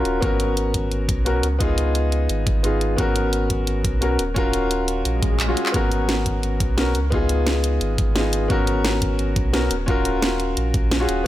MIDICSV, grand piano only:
0, 0, Header, 1, 2, 480
1, 0, Start_track
1, 0, Tempo, 344828
1, 315, Time_signature, 4, 2, 24, 8
1, 15689, End_track
2, 0, Start_track
2, 0, Title_t, "Grand piano"
2, 0, Program_c, 0, 0
2, 0, Control_c, 0, 64, 127
2, 0, Note_on_c, 0, 61, 69
2, 0, Note_on_c, 0, 65, 62
2, 0, Note_on_c, 0, 66, 64
2, 0, Note_on_c, 0, 70, 81
2, 286, Note_on_c, 0, 59, 83
2, 303, Note_off_c, 0, 61, 0
2, 303, Note_on_c, 0, 61, 75
2, 320, Note_off_c, 0, 66, 0
2, 320, Note_on_c, 0, 66, 72
2, 331, Control_c, 0, 64, 0
2, 333, Note_off_c, 0, 70, 0
2, 338, Note_off_c, 0, 65, 0
2, 338, Note_on_c, 0, 70, 93
2, 537, Control_c, 0, 64, 127
2, 1713, Note_off_c, 0, 59, 0
2, 1722, Note_off_c, 0, 61, 0
2, 1730, Note_off_c, 0, 66, 0
2, 1739, Note_off_c, 0, 70, 0
2, 1740, Note_on_c, 0, 59, 69
2, 1747, Note_on_c, 0, 61, 64
2, 1758, Note_on_c, 0, 66, 66
2, 1766, Note_on_c, 0, 70, 76
2, 1865, Note_off_c, 0, 59, 0
2, 1868, Note_off_c, 0, 61, 0
2, 1873, Note_off_c, 0, 66, 0
2, 1878, Note_off_c, 0, 70, 0
2, 2015, Control_c, 0, 64, 0
2, 2208, Note_on_c, 0, 59, 84
2, 2226, Note_on_c, 0, 63, 80
2, 2243, Note_on_c, 0, 65, 78
2, 2259, Note_on_c, 0, 68, 92
2, 2267, Control_c, 0, 64, 127
2, 3634, Note_off_c, 0, 59, 0
2, 3643, Note_off_c, 0, 63, 0
2, 3652, Note_off_c, 0, 65, 0
2, 3660, Note_off_c, 0, 68, 0
2, 3660, Note_on_c, 0, 59, 71
2, 3669, Note_on_c, 0, 63, 65
2, 3678, Note_on_c, 0, 65, 64
2, 3686, Note_on_c, 0, 68, 79
2, 3785, Note_off_c, 0, 59, 0
2, 3789, Note_off_c, 0, 63, 0
2, 3794, Note_off_c, 0, 65, 0
2, 3798, Note_off_c, 0, 68, 0
2, 4126, Note_on_c, 0, 59, 81
2, 4145, Note_on_c, 0, 61, 77
2, 4162, Note_on_c, 0, 66, 83
2, 4173, Control_c, 0, 64, 0
2, 4179, Note_on_c, 0, 70, 92
2, 4427, Control_c, 0, 64, 127
2, 5553, Note_off_c, 0, 59, 0
2, 5562, Note_off_c, 0, 61, 0
2, 5571, Note_off_c, 0, 66, 0
2, 5580, Note_off_c, 0, 70, 0
2, 5580, Note_on_c, 0, 59, 69
2, 5588, Note_on_c, 0, 61, 66
2, 5597, Note_on_c, 0, 66, 68
2, 5606, Note_on_c, 0, 70, 83
2, 5705, Note_off_c, 0, 59, 0
2, 5709, Note_off_c, 0, 61, 0
2, 5713, Note_off_c, 0, 66, 0
2, 5717, Note_off_c, 0, 70, 0
2, 5853, Control_c, 0, 64, 0
2, 6046, Note_on_c, 0, 61, 83
2, 6065, Note_on_c, 0, 65, 79
2, 6082, Note_on_c, 0, 66, 77
2, 6098, Note_on_c, 0, 70, 95
2, 6107, Control_c, 0, 64, 127
2, 7473, Note_off_c, 0, 61, 0
2, 7483, Note_off_c, 0, 65, 0
2, 7491, Note_off_c, 0, 66, 0
2, 7499, Note_off_c, 0, 70, 0
2, 7628, Note_on_c, 0, 61, 71
2, 7637, Note_on_c, 0, 65, 71
2, 7646, Note_on_c, 0, 66, 66
2, 7653, Note_on_c, 0, 68, 82
2, 7960, Note_off_c, 0, 61, 0
2, 7965, Note_off_c, 0, 65, 0
2, 7967, Note_on_c, 0, 59, 83
2, 7969, Note_off_c, 0, 66, 0
2, 7973, Note_off_c, 0, 68, 0
2, 7983, Note_on_c, 0, 61, 77
2, 8001, Note_on_c, 0, 66, 79
2, 8010, Control_c, 0, 64, 0
2, 8018, Note_on_c, 0, 70, 94
2, 8289, Control_c, 0, 64, 127
2, 9393, Note_off_c, 0, 59, 0
2, 9402, Note_off_c, 0, 61, 0
2, 9411, Note_off_c, 0, 66, 0
2, 9419, Note_off_c, 0, 70, 0
2, 9421, Note_on_c, 0, 59, 71
2, 9429, Note_on_c, 0, 61, 65
2, 9438, Note_on_c, 0, 66, 65
2, 9447, Note_on_c, 0, 70, 76
2, 9545, Note_off_c, 0, 59, 0
2, 9549, Note_off_c, 0, 61, 0
2, 9554, Note_off_c, 0, 66, 0
2, 9558, Note_off_c, 0, 70, 0
2, 9691, Control_c, 0, 64, 0
2, 9888, Note_on_c, 0, 59, 88
2, 9904, Note_on_c, 0, 63, 74
2, 9922, Note_on_c, 0, 65, 78
2, 9939, Note_on_c, 0, 68, 100
2, 9978, Control_c, 0, 64, 127
2, 11314, Note_off_c, 0, 59, 0
2, 11322, Note_off_c, 0, 63, 0
2, 11331, Note_off_c, 0, 65, 0
2, 11339, Note_off_c, 0, 68, 0
2, 11341, Note_on_c, 0, 59, 67
2, 11349, Note_on_c, 0, 63, 67
2, 11358, Note_on_c, 0, 65, 66
2, 11366, Note_on_c, 0, 68, 81
2, 11465, Note_off_c, 0, 59, 0
2, 11469, Note_off_c, 0, 63, 0
2, 11474, Note_off_c, 0, 65, 0
2, 11477, Note_off_c, 0, 68, 0
2, 11808, Note_on_c, 0, 59, 90
2, 11826, Note_on_c, 0, 61, 83
2, 11844, Note_on_c, 0, 66, 80
2, 11853, Control_c, 0, 64, 0
2, 11860, Note_on_c, 0, 70, 95
2, 12060, Control_c, 0, 64, 127
2, 13234, Note_off_c, 0, 59, 0
2, 13243, Note_off_c, 0, 61, 0
2, 13252, Note_off_c, 0, 66, 0
2, 13260, Note_off_c, 0, 70, 0
2, 13262, Note_on_c, 0, 59, 77
2, 13271, Note_on_c, 0, 61, 67
2, 13279, Note_on_c, 0, 66, 69
2, 13288, Note_on_c, 0, 70, 75
2, 13386, Note_off_c, 0, 59, 0
2, 13390, Note_off_c, 0, 61, 0
2, 13394, Note_off_c, 0, 66, 0
2, 13398, Note_off_c, 0, 70, 0
2, 13534, Control_c, 0, 64, 0
2, 13728, Note_on_c, 0, 61, 85
2, 13746, Note_on_c, 0, 65, 80
2, 13763, Note_on_c, 0, 66, 77
2, 13780, Note_on_c, 0, 70, 97
2, 13790, Control_c, 0, 64, 127
2, 15154, Note_off_c, 0, 61, 0
2, 15163, Note_off_c, 0, 65, 0
2, 15171, Note_off_c, 0, 66, 0
2, 15180, Note_off_c, 0, 70, 0
2, 15309, Note_on_c, 0, 61, 72
2, 15317, Note_on_c, 0, 65, 72
2, 15325, Note_on_c, 0, 66, 69
2, 15335, Note_on_c, 0, 68, 84
2, 15641, Note_off_c, 0, 61, 0
2, 15645, Note_off_c, 0, 65, 0
2, 15646, Note_on_c, 0, 59, 89
2, 15649, Note_off_c, 0, 66, 0
2, 15654, Note_off_c, 0, 68, 0
2, 15689, Note_off_c, 0, 59, 0
2, 15689, End_track
0, 0, End_of_file